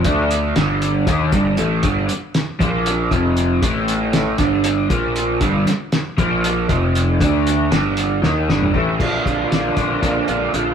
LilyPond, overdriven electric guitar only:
\new Staff \with { instrumentName = "Overdriven electric guitar" } { \clef bass \time 7/8 \key g \minor \tempo 4 = 117 <d a d'>4 <g, d g>4 <ees bes ees'>8 <g, d g>8 <a, e a>8 | <g, d g>8 r4 <bes, f bes>4 <f, c f>4 | <a, e a>4. <g, d g>4 <bes, f bes>4 | <g, d g>8 r4 <bes, f bes>4 <f, c f>4 |
<d a d'>4 <g, d g>4 <ees bes ees'>8 <g, d g>8 <a, e a>8 | <bes, d bes d' f'>8 <bes d' f'>8 <d bes d' f'>8 <bes, d bes d' f'>8 <d bes d' f'>8 <bes, d bes d' f'>8 <d bes d' f'>8 | }